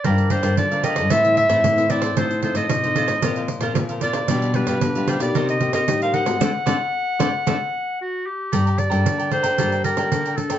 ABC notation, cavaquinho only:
X:1
M:4/4
L:1/16
Q:1/4=113
K:Gm
V:1 name="Cavaquinho"
[GBdf]2 [GBdf] [GBdf] z [Bdf] [GBdf] [Bdf] [=EAc=e] [Ace]2 [EAce] z [Ace] [EAce] [Ace] | [FAce]2 [FAce] [FAce] z [Ace] [FAce] [Ace] [FBcf] [Bcf]2 [FBcf] z [Bcf] [FBcf] [Bcf] | [DG=Bf]2 [DGBf] [DGBf] z [GBf] [DGBf] [GBf] [E_Bce] [Bce]2 [EBce] z [Bce] [EBce] [Bce] | [Acd]2 [Acd]2 z2 [Acd]2 [Acd]2 z6 |
[Adgb] [dgb] z [dgb]2 [dgb] [Adgb] [dgb] [Adgb] [dgb] [Adgb] [dgb]2 [dgb] z [dgb] |]